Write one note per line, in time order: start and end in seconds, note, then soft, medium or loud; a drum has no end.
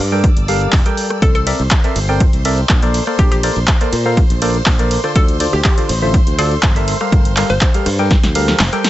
0.00 0.29 G2 loud
0.00 0.12 C5 medium
0.00 1.23 D5 medium
0.00 1.23 E6 medium
0.12 0.27 G3 loud
0.12 0.27 G4 medium
0.12 0.27 A4 medium
0.12 0.27 A#4 medium
0.12 0.27 G5 loud
0.24 kick loud
0.24 closed hi-hat medium
0.37 0.66 G1 medium
0.37 closed hi-hat soft
0.48 0.73 G3 loud
0.48 0.73 G4 medium
0.48 0.73 A4 medium
0.48 0.73 A#4 medium
0.48 0.73 F5 loud
0.48 open hi-hat loud
0.61 closed hi-hat soft
0.72 0.81 F1 medium
0.72 kick loud
0.72 clap loud
0.72 open hi-hat medium
0.86 1.21 G3 loud
0.86 1.21 G4 medium
0.86 1.21 A4 medium
0.86 1.21 A#4 medium
0.86 1.21 G5 loud
0.86 closed hi-hat soft
0.97 open hi-hat loud
1.10 cross-stick medium
1.10 closed hi-hat soft
1.22 1.52 C2 loud
1.22 1.32 A4 medium
1.22 8.90 C5 medium
1.22 8.90 C6 medium
1.22 kick loud
1.22 closed hi-hat medium
1.35 1.52 A4 medium
1.35 closed hi-hat medium
1.47 1.63 C4 medium
1.47 1.63 A4 medium
1.47 1.63 A#4 medium
1.47 1.63 D5 medium
1.47 1.63 E5 loud
1.47 open hi-hat loud
1.47 ride medium
1.60 1.67 C2 medium
1.60 closed hi-hat soft
1.71 kick loud
1.71 clap loud
1.71 closed hi-hat medium
1.84 1.99 C4 medium
1.84 1.99 A4 medium
1.84 1.99 A#4 medium
1.84 1.99 D5 medium
1.84 1.99 E5 medium
1.84 closed hi-hat medium
1.96 2.25 G1 loud
1.96 open hi-hat loud
1.96 ride medium
2.09 2.24 C4 medium
2.09 2.24 A4 medium
2.09 2.24 A#4 medium
2.09 2.24 D5 medium
2.09 2.24 G5 loud
2.20 kick loud
2.20 closed hi-hat medium
2.33 2.62 C2 medium
2.33 closed hi-hat medium
2.45 2.61 C4 loud
2.45 2.61 A4 medium
2.45 2.61 A#4 medium
2.45 2.61 D5 medium
2.45 2.61 E5 loud
2.45 open hi-hat loud
2.45 ride medium
2.69 2.99 A#1 medium
2.69 kick loud
2.69 clap loud
2.69 closed hi-hat medium
2.83 3.04 A#3 medium
2.83 3.04 A4 medium
2.83 3.04 A#4 medium
2.83 3.04 C5 medium
2.83 3.04 D5 loud
2.83 closed hi-hat soft
2.94 open hi-hat loud
2.94 ride medium
3.07 3.41 A#3 medium
3.07 3.41 A4 medium
3.07 3.41 A#4 medium
3.07 3.41 C5 medium
3.07 3.41 D5 medium
3.07 cross-stick medium
3.07 closed hi-hat soft
3.19 3.48 A#1 loud
3.19 3.27 G4 medium
3.19 kick loud
3.19 closed hi-hat medium
3.32 3.39 G4 medium
3.32 closed hi-hat medium
3.43 3.59 A#3 medium
3.43 3.59 A4 medium
3.43 3.59 A#4 medium
3.43 3.59 C5 medium
3.43 3.59 D5 loud
3.43 open hi-hat loud
3.43 ride medium
3.56 3.63 A#1 medium
3.56 closed hi-hat soft
3.67 kick loud
3.67 clap loud
3.67 closed hi-hat medium
3.81 3.96 A#3 medium
3.81 3.96 A4 medium
3.81 3.96 A#4 medium
3.81 3.96 C5 medium
3.81 3.96 D5 medium
3.81 closed hi-hat medium
3.93 4.22 A#2 loud
3.93 open hi-hat loud
3.93 ride medium
4.05 4.20 A#3 loud
4.05 4.20 A4 medium
4.05 4.20 A#4 medium
4.05 4.20 C5 medium
4.05 4.20 F5 loud
4.17 kick loud
4.17 closed hi-hat medium
4.30 4.59 A#1 medium
4.30 closed hi-hat medium
4.42 4.58 A#3 loud
4.42 4.58 A4 medium
4.42 4.58 A#4 medium
4.42 4.58 C5 medium
4.42 4.58 D5 loud
4.42 open hi-hat loud
4.42 ride medium
4.55 closed hi-hat soft
4.66 4.96 A#1 medium
4.66 kick loud
4.66 clap loud
4.66 open hi-hat medium
4.79 5.01 A#3 medium
4.79 5.01 A4 medium
4.79 5.01 A#4 medium
4.79 5.01 C5 medium
4.79 5.01 D5 loud
4.79 closed hi-hat soft
4.91 open hi-hat loud
4.91 ride medium
5.04 5.37 D3 medium
5.04 5.37 F4 medium
5.04 5.37 A4 medium
5.04 5.37 C5 medium
5.04 5.37 D5 medium
5.04 cross-stick medium
5.04 closed hi-hat soft
5.16 5.45 D2 loud
5.16 5.26 A4 medium
5.16 kick loud
5.16 closed hi-hat medium
5.28 closed hi-hat medium
5.40 5.56 D3 loud
5.40 5.56 F4 medium
5.40 5.56 A4 medium
5.40 5.56 C5 medium
5.40 5.56 D5 loud
5.40 open hi-hat loud
5.40 ride medium
5.53 5.60 D2 medium
5.53 5.61 G4 medium
5.53 closed hi-hat soft
5.64 5.73 G4 medium
5.64 kick loud
5.64 clap loud
5.64 closed hi-hat medium
5.78 5.93 D3 medium
5.78 5.93 F4 medium
5.78 5.93 A4 medium
5.78 5.93 C5 medium
5.78 5.93 D5 medium
5.78 closed hi-hat medium
5.89 6.19 A1 loud
5.89 open hi-hat loud
5.89 ride medium
6.02 6.17 D3 medium
6.02 6.17 F4 medium
6.02 6.17 A4 medium
6.02 6.17 C5 medium
6.02 6.17 E5 loud
6.14 kick loud
6.14 closed hi-hat medium
6.27 6.56 D2 medium
6.27 closed hi-hat medium
6.39 6.54 D3 loud
6.39 6.54 F4 medium
6.39 6.56 A4 medium
6.39 6.54 A4 medium
6.39 6.54 C5 medium
6.39 6.54 D5 loud
6.39 open hi-hat loud
6.39 ride medium
6.51 closed hi-hat soft
6.63 6.93 G1 medium
6.63 kick loud
6.63 clap loud
6.63 closed hi-hat medium
6.76 6.98 G3 medium
6.76 6.98 G4 medium
6.76 6.98 A4 medium
6.76 6.98 A#4 medium
6.76 6.98 E5 loud
6.76 closed hi-hat medium
6.88 open hi-hat loud
6.88 ride medium
7.01 7.34 G3 medium
7.01 7.34 G4 medium
7.01 7.34 A4 medium
7.01 7.34 A#4 medium
7.01 7.34 F5 medium
7.01 cross-stick medium
7.01 closed hi-hat soft
7.12 7.42 G1 loud
7.12 kick loud
7.12 closed hi-hat medium
7.25 closed hi-hat medium
7.37 7.53 G3 loud
7.37 7.53 G4 medium
7.37 7.53 A4 medium
7.37 7.53 A#4 medium
7.37 7.53 F5 loud
7.37 clap medium
7.37 open hi-hat loud
7.37 ride medium
7.50 7.57 G1 medium
7.50 7.99 C5 medium
7.50 closed hi-hat soft
7.61 kick loud
7.61 clap loud
7.61 closed hi-hat medium
7.74 7.89 G3 medium
7.74 7.89 G4 medium
7.74 7.89 A4 medium
7.74 7.89 A#4 medium
7.74 7.89 F5 medium
7.74 closed hi-hat medium
7.86 8.15 G2 loud
7.86 cross-stick medium
7.86 open hi-hat loud
7.86 ride medium
7.99 8.14 G3 loud
7.99 8.14 G4 medium
7.99 8.14 A4 medium
7.99 8.14 A#4 medium
7.99 8.14 G5 loud
7.99 closed hi-hat soft
8.11 kick loud
8.11 snare medium
8.11 closed hi-hat medium
8.24 8.53 D2 medium
8.24 snare medium
8.24 closed hi-hat medium
8.35 8.60 G3 medium
8.35 8.60 G4 medium
8.35 8.60 A4 medium
8.35 8.60 A#4 medium
8.35 8.60 F5 loud
8.35 open hi-hat loud
8.35 ride medium
8.48 snare medium
8.48 closed hi-hat soft
8.59 8.68 F1 loud
8.59 snare medium
8.59 clap loud
8.59 open hi-hat medium
8.73 8.90 G3 loud
8.73 8.90 G4 medium
8.73 8.90 A4 medium
8.73 8.90 A#4 medium
8.73 8.90 G5 loud
8.73 closed hi-hat medium
8.84 snare loud
8.84 open hi-hat loud
8.84 ride medium